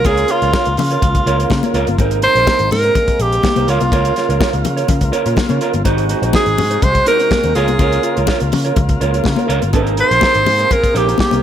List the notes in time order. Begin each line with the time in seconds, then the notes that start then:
Already playing: C#3 A#3 F4
0.05 C#2 F4 G#4 A#4 C#5, kick, closed hi-hat, muted conga
0.17 closed hi-hat
0.28 F4 A#4 C#5, closed hi-hat
0.42 C#2 F4 A#4 C#5, closed hi-hat
0.53 F4 A#4 C#5, kick, snare, high conga
0.65 C#2, muted clean electric guitar stroke, closed hi-hat
0.77 C#3 F4, muted clean electric guitar stroke, open hi-hat, muted conga, low conga
0.90 F4 A#4 C#5, closed hi-hat
1.02 C#2, muted clean electric guitar stroke, kick, closed hi-hat, muted conga, low conga
1.15 muted clean electric guitar stroke, kick, closed hi-hat
1.26 C#2 F4 A#4 C#5, closed hi-hat
1.39 F4 A#4 C#5, closed hi-hat
1.50 C#3, muted clean electric guitar stroke, kick, snare, high conga
1.63 F4 A#4 C#5, closed hi-hat, high conga
1.74 C#2 F4 A#4 C#5, closed hi-hat
1.87 G1, muted clean electric guitar stroke, closed hi-hat, high conga
1.98 G#1 C3 G#3 D#4 A#4 C5, kick, closed hi-hat, muted conga
2.11 closed hi-hat
2.22 D#4 A#4 C5, closed hi-hat
2.35 A#1 D#4 A#4 C5, closed hi-hat
2.47 D#4 A#4 C5, kick, snare, high conga
2.59 G#1, muted clean electric guitar stroke, closed hi-hat
2.71 G#2 A#4, muted clean electric guitar stroke, open hi-hat, muted conga, low conga
2.84 D#4 A#4 C5, closed hi-hat
2.95 muted clean electric guitar stroke, kick, closed hi-hat, muted conga, low conga
3.08 muted clean electric guitar stroke, kick, closed hi-hat
3.19 A#1 G4, closed hi-hat
3.32 muted clean electric guitar stroke, closed hi-hat
3.43 muted clean electric guitar stroke, kick, snare, high conga
3.56 C2 D#4 A#4 C5, closed hi-hat, high conga
3.67 C#2 C#3 F4 A#4 C#5, closed hi-hat
3.80 C2, muted clean electric guitar stroke, closed hi-hat, high conga
3.92 C#2 F4 A#4 C#5, kick, closed hi-hat, muted conga
4.05 closed hi-hat
4.16 F4 A#4 C#5, snare, closed hi-hat
4.29 C#2 F4 A#4 C#5, closed hi-hat
4.40 F4 A#4 C#5, kick, snare, high conga
4.53 C#2, muted clean electric guitar stroke, closed hi-hat
4.64 C#3, muted clean electric guitar stroke, closed hi-hat, muted conga, low conga
4.77 F4 A#4 C#5, closed hi-hat
4.88 C#3, muted clean electric guitar stroke, kick, closed hi-hat, low conga
5.01 C#2, muted clean electric guitar stroke, kick, closed hi-hat
5.12 F4 A#4 C#5, closed hi-hat
5.25 A#2 F4 A#4 C#5, closed hi-hat
5.36 muted clean electric guitar stroke, kick, snare, high conga
5.49 C#3 F4 A#4 C#5, closed hi-hat, high conga
5.61 F4 A#4 C#5, closed hi-hat
5.73 G1, muted clean electric guitar stroke, closed hi-hat, high conga
5.85 G#1 C3 G#3 D#4 F#4 C5, kick, closed hi-hat, muted conga
5.98 closed hi-hat
6.09 D#4 F#4 C5, closed hi-hat
6.22 A#1 D#4 F#4 C5, closed hi-hat
6.33 D#4 F#4 G#4 C5, kick, snare, high conga
6.46 G#1, muted clean electric guitar stroke, closed hi-hat
6.58 G#2, muted clean electric guitar stroke, open hi-hat, muted conga, low conga
6.70 D#4 F#4 C5, closed hi-hat
6.82 C2 C5, muted clean electric guitar stroke, kick, closed hi-hat, muted conga, low conga
6.95 muted clean electric guitar stroke, kick, closed hi-hat
7.06 D#4 F#4 A#4 C5, closed hi-hat
7.19 D#4 F#4 C5, closed hi-hat
7.31 muted clean electric guitar stroke, kick, snare, high conga
7.43 D#2 D#4 F#4 C5, closed hi-hat, high conga
7.54 C#2 C#3 A#3 F4 G#4 A#4 C#5, closed hi-hat
7.68 C2, muted clean electric guitar stroke, closed hi-hat, high conga
7.79 C#2 F4 A#4 C#5, kick, closed hi-hat, muted conga
7.92 closed hi-hat
8.03 F4 A#4 C#5, closed hi-hat
8.17 C#2 F4 A#4 C#5, closed hi-hat
8.27 F4 A#4 C#5, kick, snare, high conga
8.40 C#2, muted clean electric guitar stroke, closed hi-hat
8.52 C#3, muted clean electric guitar stroke, open hi-hat, muted conga, low conga
8.65 F4 A#4 C#5, closed hi-hat
8.76 C#2, muted clean electric guitar stroke, kick, closed hi-hat, muted conga, low conga
8.89 muted clean electric guitar stroke, kick, closed hi-hat
9.01 C#2 F4 A#4 C#5, closed hi-hat
9.13 F4 A#4 C#5, closed hi-hat
9.24 C#3, muted clean electric guitar stroke, kick, snare, high conga
9.36 F4 A#4 C#5, closed hi-hat, high conga
9.48 C#2 F4 A#4 C#5, closed hi-hat
9.62 G1, muted clean electric guitar stroke, closed hi-hat, high conga
9.73 G#1 C3 D#4 G#4 A#4 C5, kick, closed hi-hat, muted conga
9.87 closed hi-hat
9.97 D#4 A#4 C5, closed hi-hat
10.11 A#1 D#4 A#4 C5, closed hi-hat
10.21 D#4 A#4 C5, kick, snare, high conga
10.34 G#1, muted clean electric guitar stroke, closed hi-hat
10.46 G#2, muted clean electric guitar stroke, open hi-hat, muted conga, low conga
10.59 D#4 A#4 C5, closed hi-hat
10.71 A#4, muted clean electric guitar stroke, kick, closed hi-hat, muted conga, low conga
10.83 muted clean electric guitar stroke, kick, closed hi-hat
10.94 A#1 D#4 G4 A#4 C5, closed hi-hat
11.07 D#4 A#4 C5, closed hi-hat
11.18 G4, muted clean electric guitar stroke, kick, snare, high conga
11.31 C2 D#4 A#4 C5, closed hi-hat, high conga